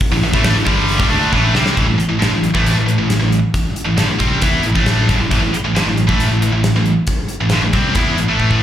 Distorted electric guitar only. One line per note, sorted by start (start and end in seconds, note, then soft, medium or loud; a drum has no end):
0.12 0.22 A2 medium
0.12 0.22 E3 medium
0.23 0.33 A2 medium
0.23 0.33 E3 medium
0.34 0.55 A2 medium
0.34 0.55 E3 medium
0.34 0.56 A3 loud
0.56 0.67 A2 medium
0.56 0.66 E3 medium
0.66 0.99 G2 medium
0.66 0.99 D3 medium
0.66 0.98 G3 loud
0.99 1.10 C3 medium
0.99 1.10 G3 medium
1.10 1.32 D3 medium
1.10 1.32 A3 medium
1.10 1.32 D4 loud
1.33 1.54 A2 medium
1.33 1.55 E3 medium
1.33 1.55 A3 loud
1.55 1.76 C3 medium
1.55 1.76 G3 medium
1.55 1.77 C4 medium
1.76 1.86 A2 medium
1.76 1.86 E3 medium
1.87 1.97 A2 medium
1.87 1.99 E3 medium
1.98 muted distorted electric guitar stroke soft
2.09 2.19 A2 medium
2.09 2.21 E3 medium
2.19 2.31 G2 medium
2.19 2.31 D3 medium
2.31 2.50 A2 medium
2.31 2.50 E3 medium
2.54 2.74 A2 medium
2.54 2.74 E3 medium
2.54 2.76 A3 medium
2.75 2.85 A2 medium
2.75 2.85 E3 medium
2.86 2.97 A2 medium
2.86 2.97 E3 medium
2.98 3.16 A2 soft
2.98 3.16 E3 medium
3.19 3.38 A2 medium
3.19 3.38 E3 medium
3.85 3.97 A2 soft
3.85 3.98 E3 medium
3.97 4.08 G2 medium
3.97 4.08 D3 medium
4.08 4.18 A2 medium
4.08 4.19 E3 medium
4.19 4.41 C3 medium
4.19 4.41 G3 medium
4.19 4.41 C4 medium
4.42 4.62 E3 medium
4.42 4.63 B3 medium
4.42 4.64 E4 medium
4.63 4.74 A2 medium
4.63 4.75 E3 medium
4.75 5.08 A2 medium
4.75 5.08 E3 medium
4.75 5.08 A3 medium
5.09 5.19 G2 medium
5.09 5.20 D3 medium
5.20 5.29 A2 medium
5.20 5.30 E3 medium
5.31 5.41 A2 medium
5.31 5.41 E3 medium
5.42 5.52 A2 medium
5.42 5.53 E3 medium
5.53 muted distorted electric guitar stroke soft
5.65 5.74 A2 medium
5.65 5.75 E3 medium
5.75 5.85 G2 medium
5.75 5.85 D3 medium
5.86 6.04 A2 medium
5.86 6.03 E3 medium
6.07 6.28 A2 medium
6.07 6.29 E3 medium
6.07 6.29 A3 medium
6.29 6.41 A2 medium
6.29 6.41 E3 medium
6.42 6.51 A2 soft
6.42 6.52 E3 medium
6.52 6.70 A2 medium
6.52 6.70 E3 medium
6.76 6.93 A2 medium
6.76 6.93 E3 medium
7.41 7.52 A2 medium
7.41 7.52 E3 medium
7.52 7.62 G2 medium
7.52 7.62 D3 medium
7.63 7.73 A2 medium
7.63 7.73 E3 medium
7.73 7.94 C3 medium
7.73 7.95 G3 medium
7.73 7.95 C4 medium
7.95 8.16 E3 medium
7.95 8.17 B3 medium
7.95 8.17 E4 medium
8.17 8.27 A2 medium
8.17 8.27 E3 medium
8.28 8.61 A2 medium
8.28 8.61 E3 medium
8.28 8.61 A3 medium